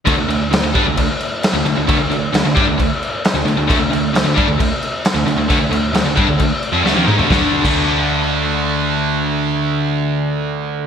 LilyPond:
<<
  \new Staff \with { instrumentName = "Distorted electric guitar" } { \time 4/4 \key c \major \tempo 4 = 133 <d a>16 <d a>16 <d a>8 <d a>16 <d a>16 <g d'>16 <d a>16 <d a>16 r4 <d a>16 <d a>16 <d a>16 | <d a>16 <d a>16 <d a>8 <d a>16 <d a>16 <g d'>16 <d a>16 <d a>16 r4 <d a>16 <d a>16 <d a>16 | <d a>16 <d a>16 <d a>8 <d a>16 <d a>16 <g d'>16 <d a>16 <d a>16 r4 <d a>16 <d a>16 <d a>16 | <d a>16 <d a>16 <d a>8 <d a>16 <d a>16 <g d'>16 <d a>16 <d a>16 r8 <f c'>16 <d a>16 <ees bes>16 <gis ees'>16 <d a>16 |
<d a d'>16 r8 <d a d'>2.~ <d a d'>16~ | <d a d'>1 | }
  \new Staff \with { instrumentName = "Distorted electric guitar" } { \time 4/4 \key c \major <d a>16 <d a>16 <d a>8 <d a>16 <d a>16 <g d'>16 <d a>16 <d a>16 r4 <d a>16 <d a>16 <d a>16 | <d a>16 <d a>16 <d a>8 <d a>16 <d a>16 <g d'>16 <d a>16 <d a>16 r4 <d a>16 <d a>16 <d a>16 | <d a>16 <d a>16 <d a>8 <d a>16 <d a>16 <g d'>16 <d a>16 <d a>16 r4 <d a>16 <d a>16 <d a>16 | <d a>16 <d a>16 <d a>8 <d a>16 <d a>16 <g d'>16 <d a>16 <d a>16 r8 <f c'>16 <d a>16 <ees bes>16 <gis ees'>16 <d a>16 |
<d a d'>16 r8 <d a d'>2.~ <d a d'>16~ | <d a d'>1 | }
  \new Staff \with { instrumentName = "Overdriven electric guitar" } { \time 4/4 \key c \major <d a>16 <d a>16 <d a>8 <d a>16 <d a>16 <g d'>16 <d a>16 <d a>16 r4 <d a>16 <d a>16 <d a>16 | <d a>16 <d a>16 <d a>8 <d a>16 <d a>16 <g d'>16 <d a>16 <d a>16 r4 <d a>16 <d a>16 <d a>16 | <d a>16 <d a>16 <d a>8 <d a>16 <d a>16 <g d'>16 <d a>16 <d a>16 r4 <d a>16 <d a>16 <d a>16 | <d a>16 <d a>16 <d a>8 <d a>16 <d a>16 <g d'>16 <d a>16 <d a>16 r8 <f c'>16 <d a>16 <ees bes>16 <gis ees'>16 <d a>16 |
<d a d'>16 r8 <d a d'>2.~ <d a d'>16~ | <d a d'>1 | }
  \new Staff \with { instrumentName = "Picked electric bass" } { \clef bass \time 4/4 \key c \major d,16 d,16 d,8 d,16 d,16 g,16 d,16 d,16 r4 d,16 d,16 d,16 | d,16 d,16 d,8 d,16 d,16 g,16 d,16 d,16 r4 d,16 d,16 d,16 | d,16 d,16 d,8 d,16 d,16 g,16 d,16 d,16 r4 d,16 d,16 d,16 | d,16 d,16 d,8 d,16 d,16 g,16 d,16 d,16 r8 f,16 d,16 ees,16 gis,16 d,16 |
d,16 r8 d,2.~ d,16~ | d,1 | }
  \new DrumStaff \with { instrumentName = "Drums" } \drummode { \time 4/4 <cymc bd>8 cymc8 <cymc sn>8 <cymc bd>8 <cymc bd>8 cymc8 <cymc sn>8 cymc8 | <cymc bd>8 cymc8 <cymc sn>8 <cymc bd>8 <cymc bd>8 cymc8 <cymc sn>8 cymc8 | <cymc bd>8 cymc8 <cymc sn>8 <cymc bd>8 <cymc bd>8 cymc8 <cymc sn>8 cymc8 | <cymc bd>8 cymc8 <cymc sn>8 <cymc bd>8 <cymc bd>8 cymc8 sn16 tommh16 toml16 tomfh16 |
<bd sn>8. <cymc bd>16 r4 r4 r4 | r4 r4 r4 r4 | }
>>